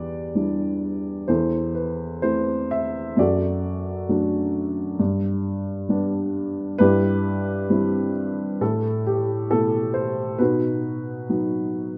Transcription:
Already playing: E2 G4 B4 D5
0.35 G3 D4 E4
1.28 E2 E4 A4 C5
1.75 B4
2.22 A3 C4 E4 C5
2.71 E5
3.17 F#2 F#4 A4 D5
4.09 F#3 A3 D4
4.99 G2
5.89 G3 B3 D4
6.78 G2 E4 G4 B4
7.70 G3 C4 E4
8.61 A2 E4 A4
9.06 G4
9.50 B2 A3 E4 A4
9.94 C5
10.39 B2 D#4 F#4 B4
11.29 F#3 B3 D#4

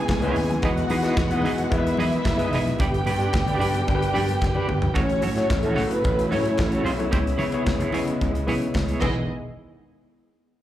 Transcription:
Already playing: C#3 E3 G#3 B3 C#4 E4 G#4 B4 G#5
0.09 C#2, muted clean electric guitar stroke, kick, snare, clap, muted conga
0.21 G#3 B3 C#4 E4 G#4 B4 C#5, closed hi-hat, low conga
0.26 B3
0.35 D#2, muted clean electric guitar stroke, open hi-hat, muted conga
0.49 muted clean electric guitar stroke, closed hi-hat, high conga
0.61 E2 B2 G#3 B3 D#4 E4 F#4 G#4 B4 D#5 F#5, kick, closed hi-hat, muted conga, low conga
0.77 muted clean electric guitar stroke, closed hi-hat
0.89 E3 D#4 G#4 B4 D#5, open hi-hat, high conga
1.03 G#3 B3 D#4 E4 G#4 B4 D#5, snare, closed hi-hat
1.17 E2, muted clean electric guitar stroke, kick, snare, clap, muted conga
1.30 E2 D#4 G#4 B4 D#5, closed hi-hat
1.42 E3 G#3 B3 D#4 E4 G#4 B4, open hi-hat, high conga, low conga
1.46 D#5
1.58 muted clean electric guitar stroke, closed hi-hat
1.70 E2 G#3 B3 E4 A#4 E5, kick, closed hi-hat
1.78 B4
1.85 muted clean electric guitar stroke, closed hi-hat
1.97 E3 D#4 G#4 B4 D#5, open hi-hat, muted conga, high conga
2.13 muted clean electric guitar stroke, closed hi-hat
2.24 F#1, muted clean electric guitar stroke, kick, snare, clap, muted conga
2.37 G#3 B3 D#4 E4 G#4 B4 D#5, closed hi-hat, low conga
2.52 E1 D#4 G#4 B4 D#5, open hi-hat
2.65 muted clean electric guitar stroke, closed hi-hat, high conga
2.78 G1 D3 G3 D4 G4 B4 D5 G5, kick, closed hi-hat, muted conga, low conga
2.94 muted clean electric guitar stroke, closed hi-hat
3.05 G2 D4 G4 B4 D5, open hi-hat, muted conga, high conga
3.19 D4 G4 B4 D5, closed hi-hat
3.33 G1, muted clean electric guitar stroke, kick, snare, clap
3.47 G1 D4 G4 B4 D5, closed hi-hat
3.59 G2 D4 G4 B4 D5, open hi-hat, muted conga, high conga, low conga
3.74 muted clean electric guitar stroke, closed hi-hat
3.87 G1 D4 G4 A#4, kick, closed hi-hat, muted conga
3.95 B4
4.01 muted clean electric guitar stroke, closed hi-hat
4.13 G2 D4 G4 B4 D5, open hi-hat, muted conga, high conga
4.29 muted clean electric guitar stroke, closed hi-hat
4.42 F#1, muted clean electric guitar stroke, kick, snare, clap, muted conga
4.54 D4 G4 B4 D5, low conga
4.67 G1, muted clean electric guitar stroke, mid tom
4.82 muted clean electric guitar stroke, floor tom, high conga
4.94 A1 C#3 F#3 A3 C#4 E4 F#4 A4 C#5, kick, closed hi-hat, muted conga, low conga
5.09 closed hi-hat
5.21 A2 C#4 F#4 A4 C#5, open hi-hat, muted conga, high conga
5.35 A3 C#4 E4 F#4 A4 C#5, snare, closed hi-hat
5.50 A1, muted clean electric guitar stroke, kick, snare, clap
5.62 A1 A3 C#4 F#4 A4 C#5, closed hi-hat
5.75 A2 A3 C#4 E4 F#4 A4 C#5, open hi-hat, muted conga, high conga, low conga
5.89 B3 B4, muted clean electric guitar stroke, closed hi-hat
6.04 A1, kick, closed hi-hat, muted conga
6.17 muted clean electric guitar stroke, closed hi-hat
6.29 A2 A3 C#4 E4 F#4 A4 C#5, open hi-hat, high conga
6.44 muted clean electric guitar stroke, closed hi-hat
6.58 A1, muted clean electric guitar stroke, kick, snare, clap
6.70 C#4 F#4 A4 C#5, closed hi-hat
6.84 B1 C#4 F#4 A4 C#5, open hi-hat
6.98 A3 E4 F#4 C#5, muted clean electric guitar stroke, closed hi-hat, high conga
7.11 C#2 C#3 G#3 B3 E4 G#4 C#5, kick, closed hi-hat, muted conga, low conga
7.26 muted clean electric guitar stroke, closed hi-hat
7.37 C#3 B3 E4 G#4 C#5, open hi-hat, high conga
7.52 B3 E4 G#4 C#5, closed hi-hat
7.65 C#2, muted clean electric guitar stroke, kick, snare, clap
7.78 C#2 B3 E4 G#4 C#5, closed hi-hat
7.92 C#3 B3 E4 G#4 C#5 D#5, open hi-hat, muted conga, high conga, low conga
8.06 muted clean electric guitar stroke, closed hi-hat
8.21 C#2, kick, closed hi-hat
8.34 muted clean electric guitar stroke, closed hi-hat
8.47 C#3 B3 E4 G#4 C#5, open hi-hat, muted conga, high conga
8.62 muted clean electric guitar stroke, closed hi-hat
8.74 C#2, muted clean electric guitar stroke, kick, snare, clap
8.87 B3 E4 G#4 C#5, closed hi-hat
9.00 E1 D#3 G#3 B3 D#4 E4 G#4 B4 D#5, kick, clap, crash, high conga

